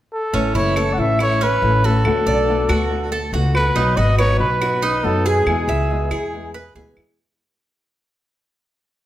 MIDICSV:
0, 0, Header, 1, 7, 480
1, 0, Start_track
1, 0, Key_signature, 3, "major"
1, 0, Tempo, 428266
1, 371, Time_signature, 4, 2, 24, 8
1, 10144, End_track
2, 0, Start_track
2, 0, Title_t, "Trumpet"
2, 0, Program_c, 0, 56
2, 148, Note_on_c, 0, 69, 80
2, 587, Note_off_c, 0, 69, 0
2, 625, Note_on_c, 0, 73, 86
2, 1045, Note_on_c, 0, 78, 60
2, 1062, Note_off_c, 0, 73, 0
2, 1113, Note_on_c, 0, 76, 88
2, 1129, Note_off_c, 0, 78, 0
2, 1343, Note_off_c, 0, 76, 0
2, 1364, Note_on_c, 0, 73, 95
2, 1603, Note_on_c, 0, 71, 92
2, 1620, Note_off_c, 0, 73, 0
2, 2079, Note_on_c, 0, 69, 86
2, 2096, Note_off_c, 0, 71, 0
2, 3506, Note_off_c, 0, 69, 0
2, 3976, Note_on_c, 0, 71, 90
2, 4451, Note_on_c, 0, 75, 86
2, 4468, Note_off_c, 0, 71, 0
2, 4682, Note_off_c, 0, 75, 0
2, 4689, Note_on_c, 0, 73, 97
2, 4913, Note_off_c, 0, 73, 0
2, 4926, Note_on_c, 0, 71, 84
2, 5650, Note_on_c, 0, 69, 87
2, 5667, Note_off_c, 0, 71, 0
2, 5894, Note_on_c, 0, 68, 84
2, 5911, Note_off_c, 0, 69, 0
2, 7572, Note_off_c, 0, 68, 0
2, 10144, End_track
3, 0, Start_track
3, 0, Title_t, "Cuban tres"
3, 0, Program_c, 1, 25
3, 377, Note_on_c, 1, 61, 69
3, 607, Note_off_c, 1, 61, 0
3, 617, Note_on_c, 1, 64, 65
3, 848, Note_off_c, 1, 64, 0
3, 860, Note_on_c, 1, 69, 61
3, 1323, Note_off_c, 1, 69, 0
3, 1348, Note_on_c, 1, 64, 52
3, 1574, Note_off_c, 1, 64, 0
3, 1581, Note_on_c, 1, 61, 71
3, 2043, Note_off_c, 1, 61, 0
3, 2065, Note_on_c, 1, 66, 61
3, 2525, Note_off_c, 1, 66, 0
3, 2540, Note_on_c, 1, 74, 60
3, 3002, Note_off_c, 1, 74, 0
3, 3016, Note_on_c, 1, 66, 61
3, 3480, Note_off_c, 1, 66, 0
3, 3496, Note_on_c, 1, 69, 65
3, 3727, Note_off_c, 1, 69, 0
3, 3740, Note_on_c, 1, 66, 56
3, 4202, Note_off_c, 1, 66, 0
3, 4210, Note_on_c, 1, 63, 71
3, 4444, Note_off_c, 1, 63, 0
3, 4450, Note_on_c, 1, 66, 57
3, 4684, Note_off_c, 1, 66, 0
3, 4691, Note_on_c, 1, 71, 59
3, 5156, Note_off_c, 1, 71, 0
3, 5173, Note_on_c, 1, 66, 56
3, 5405, Note_off_c, 1, 66, 0
3, 5407, Note_on_c, 1, 63, 76
3, 5874, Note_off_c, 1, 63, 0
3, 5892, Note_on_c, 1, 68, 73
3, 6357, Note_off_c, 1, 68, 0
3, 6373, Note_on_c, 1, 76, 61
3, 6837, Note_off_c, 1, 76, 0
3, 6849, Note_on_c, 1, 68, 69
3, 7315, Note_off_c, 1, 68, 0
3, 7335, Note_on_c, 1, 71, 69
3, 7565, Note_off_c, 1, 71, 0
3, 7572, Note_on_c, 1, 68, 59
3, 8037, Note_off_c, 1, 68, 0
3, 10144, End_track
4, 0, Start_track
4, 0, Title_t, "Nylon-string guitar"
4, 0, Program_c, 2, 24
4, 372, Note_on_c, 2, 52, 72
4, 381, Note_on_c, 2, 57, 68
4, 386, Note_on_c, 2, 61, 65
4, 391, Note_on_c, 2, 64, 61
4, 843, Note_off_c, 2, 52, 0
4, 848, Note_off_c, 2, 57, 0
4, 850, Note_off_c, 2, 61, 0
4, 852, Note_off_c, 2, 64, 0
4, 856, Note_on_c, 2, 52, 62
4, 864, Note_on_c, 2, 57, 63
4, 871, Note_on_c, 2, 61, 59
4, 877, Note_on_c, 2, 64, 65
4, 1080, Note_off_c, 2, 64, 0
4, 1085, Note_off_c, 2, 52, 0
4, 1089, Note_off_c, 2, 57, 0
4, 1093, Note_off_c, 2, 61, 0
4, 1094, Note_on_c, 2, 64, 50
4, 1107, Note_on_c, 2, 61, 41
4, 1119, Note_on_c, 2, 57, 44
4, 1324, Note_off_c, 2, 64, 0
4, 1330, Note_off_c, 2, 61, 0
4, 1335, Note_on_c, 2, 52, 43
4, 1336, Note_off_c, 2, 57, 0
4, 1348, Note_on_c, 2, 57, 44
4, 1354, Note_on_c, 2, 61, 41
4, 1361, Note_on_c, 2, 64, 48
4, 1565, Note_off_c, 2, 52, 0
4, 1571, Note_off_c, 2, 57, 0
4, 1574, Note_off_c, 2, 61, 0
4, 1578, Note_off_c, 2, 64, 0
4, 1813, Note_on_c, 2, 52, 62
4, 1822, Note_on_c, 2, 57, 70
4, 1830, Note_on_c, 2, 61, 68
4, 1836, Note_on_c, 2, 64, 71
4, 2044, Note_off_c, 2, 52, 0
4, 2045, Note_off_c, 2, 64, 0
4, 2048, Note_off_c, 2, 57, 0
4, 2053, Note_off_c, 2, 61, 0
4, 2059, Note_on_c, 2, 64, 42
4, 2072, Note_on_c, 2, 61, 42
4, 2084, Note_on_c, 2, 57, 38
4, 2287, Note_off_c, 2, 64, 0
4, 2293, Note_off_c, 2, 61, 0
4, 2299, Note_off_c, 2, 57, 0
4, 2299, Note_on_c, 2, 50, 66
4, 2311, Note_on_c, 2, 57, 64
4, 2319, Note_on_c, 2, 59, 64
4, 2323, Note_on_c, 2, 66, 69
4, 2763, Note_off_c, 2, 50, 0
4, 2773, Note_off_c, 2, 57, 0
4, 2776, Note_on_c, 2, 50, 66
4, 2777, Note_off_c, 2, 59, 0
4, 2779, Note_off_c, 2, 66, 0
4, 2788, Note_on_c, 2, 57, 65
4, 2796, Note_on_c, 2, 59, 64
4, 2801, Note_on_c, 2, 66, 68
4, 3003, Note_off_c, 2, 66, 0
4, 3005, Note_off_c, 2, 50, 0
4, 3011, Note_off_c, 2, 57, 0
4, 3015, Note_off_c, 2, 59, 0
4, 3017, Note_on_c, 2, 66, 45
4, 3033, Note_on_c, 2, 59, 50
4, 3041, Note_on_c, 2, 57, 38
4, 3246, Note_off_c, 2, 66, 0
4, 3247, Note_off_c, 2, 57, 0
4, 3249, Note_on_c, 2, 50, 40
4, 3254, Note_off_c, 2, 59, 0
4, 3261, Note_on_c, 2, 57, 48
4, 3272, Note_on_c, 2, 59, 46
4, 3275, Note_on_c, 2, 66, 53
4, 3482, Note_off_c, 2, 50, 0
4, 3487, Note_off_c, 2, 57, 0
4, 3487, Note_off_c, 2, 59, 0
4, 3495, Note_off_c, 2, 66, 0
4, 3729, Note_on_c, 2, 50, 61
4, 3740, Note_on_c, 2, 57, 64
4, 3747, Note_on_c, 2, 59, 69
4, 3754, Note_on_c, 2, 66, 70
4, 3957, Note_off_c, 2, 66, 0
4, 3961, Note_off_c, 2, 50, 0
4, 3967, Note_off_c, 2, 57, 0
4, 3970, Note_off_c, 2, 59, 0
4, 3970, Note_on_c, 2, 66, 38
4, 3985, Note_on_c, 2, 59, 40
4, 3999, Note_on_c, 2, 57, 41
4, 4202, Note_off_c, 2, 66, 0
4, 4209, Note_off_c, 2, 59, 0
4, 4214, Note_on_c, 2, 47, 56
4, 4216, Note_off_c, 2, 57, 0
4, 4221, Note_on_c, 2, 54, 67
4, 4227, Note_on_c, 2, 59, 67
4, 4232, Note_on_c, 2, 63, 76
4, 4237, Note_on_c, 2, 66, 75
4, 4674, Note_off_c, 2, 47, 0
4, 4677, Note_off_c, 2, 54, 0
4, 4686, Note_off_c, 2, 59, 0
4, 4687, Note_on_c, 2, 47, 57
4, 4690, Note_on_c, 2, 54, 64
4, 4692, Note_off_c, 2, 63, 0
4, 4695, Note_off_c, 2, 66, 0
4, 4700, Note_on_c, 2, 59, 68
4, 4704, Note_on_c, 2, 63, 64
4, 4709, Note_on_c, 2, 66, 79
4, 4911, Note_off_c, 2, 66, 0
4, 4920, Note_off_c, 2, 47, 0
4, 4921, Note_off_c, 2, 54, 0
4, 4924, Note_on_c, 2, 66, 58
4, 4926, Note_off_c, 2, 59, 0
4, 4928, Note_off_c, 2, 63, 0
4, 4940, Note_on_c, 2, 63, 43
4, 4950, Note_on_c, 2, 59, 39
4, 5158, Note_off_c, 2, 66, 0
4, 5161, Note_off_c, 2, 59, 0
4, 5164, Note_on_c, 2, 54, 45
4, 5166, Note_off_c, 2, 63, 0
4, 5174, Note_on_c, 2, 59, 41
4, 5182, Note_on_c, 2, 63, 51
4, 5187, Note_on_c, 2, 66, 47
4, 5398, Note_off_c, 2, 54, 0
4, 5403, Note_off_c, 2, 59, 0
4, 5407, Note_off_c, 2, 63, 0
4, 5407, Note_off_c, 2, 66, 0
4, 5635, Note_on_c, 2, 47, 64
4, 5648, Note_on_c, 2, 54, 71
4, 5649, Note_on_c, 2, 59, 73
4, 5656, Note_on_c, 2, 63, 65
4, 5661, Note_on_c, 2, 66, 69
4, 5870, Note_off_c, 2, 66, 0
4, 5873, Note_off_c, 2, 47, 0
4, 5879, Note_off_c, 2, 54, 0
4, 5880, Note_off_c, 2, 59, 0
4, 5883, Note_on_c, 2, 66, 49
4, 5884, Note_off_c, 2, 63, 0
4, 5897, Note_on_c, 2, 63, 46
4, 5909, Note_on_c, 2, 59, 38
4, 6117, Note_off_c, 2, 66, 0
4, 6124, Note_off_c, 2, 63, 0
4, 6124, Note_on_c, 2, 47, 63
4, 6130, Note_off_c, 2, 59, 0
4, 6132, Note_on_c, 2, 52, 60
4, 6140, Note_on_c, 2, 56, 68
4, 6145, Note_on_c, 2, 59, 70
4, 6149, Note_on_c, 2, 64, 71
4, 6597, Note_off_c, 2, 47, 0
4, 6601, Note_off_c, 2, 52, 0
4, 6605, Note_off_c, 2, 56, 0
4, 6608, Note_off_c, 2, 59, 0
4, 6610, Note_off_c, 2, 64, 0
4, 6611, Note_on_c, 2, 47, 67
4, 6620, Note_on_c, 2, 52, 63
4, 6624, Note_on_c, 2, 56, 65
4, 6628, Note_on_c, 2, 59, 68
4, 6637, Note_on_c, 2, 64, 62
4, 6834, Note_off_c, 2, 64, 0
4, 6841, Note_off_c, 2, 47, 0
4, 6845, Note_off_c, 2, 52, 0
4, 6847, Note_off_c, 2, 59, 0
4, 6848, Note_off_c, 2, 56, 0
4, 6848, Note_on_c, 2, 64, 53
4, 6860, Note_on_c, 2, 59, 48
4, 6869, Note_on_c, 2, 56, 42
4, 7079, Note_off_c, 2, 64, 0
4, 7085, Note_off_c, 2, 59, 0
4, 7090, Note_off_c, 2, 56, 0
4, 7093, Note_on_c, 2, 52, 43
4, 7106, Note_on_c, 2, 56, 46
4, 7111, Note_on_c, 2, 59, 48
4, 7120, Note_on_c, 2, 64, 51
4, 7322, Note_off_c, 2, 52, 0
4, 7329, Note_off_c, 2, 56, 0
4, 7331, Note_off_c, 2, 59, 0
4, 7336, Note_off_c, 2, 64, 0
4, 7576, Note_on_c, 2, 47, 65
4, 7585, Note_on_c, 2, 52, 73
4, 7588, Note_on_c, 2, 56, 62
4, 7593, Note_on_c, 2, 59, 72
4, 7598, Note_on_c, 2, 64, 72
4, 7802, Note_off_c, 2, 64, 0
4, 7803, Note_off_c, 2, 47, 0
4, 7808, Note_off_c, 2, 52, 0
4, 7810, Note_off_c, 2, 56, 0
4, 7812, Note_off_c, 2, 59, 0
4, 7815, Note_on_c, 2, 64, 43
4, 7830, Note_on_c, 2, 59, 44
4, 7842, Note_on_c, 2, 56, 36
4, 8043, Note_off_c, 2, 64, 0
4, 8051, Note_off_c, 2, 59, 0
4, 8057, Note_off_c, 2, 56, 0
4, 10144, End_track
5, 0, Start_track
5, 0, Title_t, "Upright bass"
5, 0, Program_c, 3, 32
5, 373, Note_on_c, 3, 33, 80
5, 601, Note_off_c, 3, 33, 0
5, 607, Note_on_c, 3, 30, 80
5, 1066, Note_off_c, 3, 30, 0
5, 1097, Note_on_c, 3, 33, 78
5, 1780, Note_off_c, 3, 33, 0
5, 1816, Note_on_c, 3, 33, 84
5, 2271, Note_off_c, 3, 33, 0
5, 2294, Note_on_c, 3, 38, 81
5, 2522, Note_off_c, 3, 38, 0
5, 2536, Note_on_c, 3, 35, 90
5, 2991, Note_off_c, 3, 35, 0
5, 3016, Note_on_c, 3, 38, 82
5, 3699, Note_off_c, 3, 38, 0
5, 3728, Note_on_c, 3, 37, 90
5, 4186, Note_off_c, 3, 37, 0
5, 4209, Note_on_c, 3, 35, 98
5, 4439, Note_off_c, 3, 35, 0
5, 4453, Note_on_c, 3, 32, 92
5, 4908, Note_off_c, 3, 32, 0
5, 4934, Note_on_c, 3, 35, 80
5, 5616, Note_off_c, 3, 35, 0
5, 5650, Note_on_c, 3, 42, 86
5, 6106, Note_off_c, 3, 42, 0
5, 6123, Note_on_c, 3, 40, 91
5, 6354, Note_off_c, 3, 40, 0
5, 6362, Note_on_c, 3, 37, 91
5, 6822, Note_off_c, 3, 37, 0
5, 6843, Note_on_c, 3, 40, 77
5, 7531, Note_off_c, 3, 40, 0
5, 7568, Note_on_c, 3, 38, 71
5, 7785, Note_off_c, 3, 38, 0
5, 7809, Note_on_c, 3, 40, 74
5, 8026, Note_off_c, 3, 40, 0
5, 10144, End_track
6, 0, Start_track
6, 0, Title_t, "Muted nylon-string guitar strokes"
6, 1580, Note_on_c, 9, 29, 56
6, 1692, Note_off_c, 9, 29, 0
6, 3494, Note_on_c, 9, 29, 53
6, 3606, Note_off_c, 9, 29, 0
6, 5407, Note_on_c, 9, 29, 54
6, 5519, Note_off_c, 9, 29, 0
6, 7336, Note_on_c, 9, 29, 60
6, 7448, Note_off_c, 9, 29, 0
6, 10144, End_track
7, 0, Start_track
7, 0, Title_t, "Drums"
7, 853, Note_on_c, 9, 75, 57
7, 965, Note_off_c, 9, 75, 0
7, 1334, Note_on_c, 9, 75, 54
7, 1447, Note_off_c, 9, 75, 0
7, 2297, Note_on_c, 9, 75, 58
7, 2409, Note_off_c, 9, 75, 0
7, 3021, Note_on_c, 9, 75, 62
7, 3133, Note_off_c, 9, 75, 0
7, 3977, Note_on_c, 9, 75, 58
7, 4089, Note_off_c, 9, 75, 0
7, 4691, Note_on_c, 9, 75, 60
7, 4803, Note_off_c, 9, 75, 0
7, 5173, Note_on_c, 9, 75, 55
7, 5285, Note_off_c, 9, 75, 0
7, 6128, Note_on_c, 9, 75, 58
7, 6240, Note_off_c, 9, 75, 0
7, 6849, Note_on_c, 9, 75, 61
7, 6961, Note_off_c, 9, 75, 0
7, 7809, Note_on_c, 9, 75, 56
7, 7921, Note_off_c, 9, 75, 0
7, 10144, End_track
0, 0, End_of_file